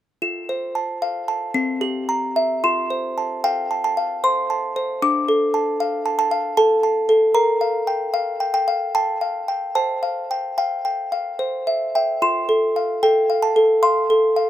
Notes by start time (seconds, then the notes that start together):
0.22 F4
0.49 C5
0.75 A5
1.02 F5
1.28 A5
1.54 C4
1.81 G4
2.09 A#5
2.36 E5
2.64 F4 C6
2.90 C5
3.18 A5
3.44 F5 G5
3.71 A5
3.84 A5
3.97 F5
4.24 C5 C6
4.50 A5
4.76 C5
5.02 D4 D6
5.28 A4
5.54 A5
5.80 F5
6.06 A5
6.19 A5
6.31 F5
6.57 A4 A5
6.83 A5
7.09 A4
7.35 A#4 A#5
7.61 F5
7.87 G5
8.14 F5
8.40 G5
8.54 G5
8.68 F5
8.95 G5 A5
9.21 F5
9.48 G5
9.75 C5 A5
10.03 F5
10.31 G5
10.58 F5 G5
10.85 G5
11.12 F5
11.39 C5
11.67 E5
11.95 E5 G5
12.22 F4 C6
12.49 A4
12.76 F5
13.03 A4 G5
13.30 F5
13.43 A5
13.56 A4
13.83 F5 C6
14.10 A4
14.36 F5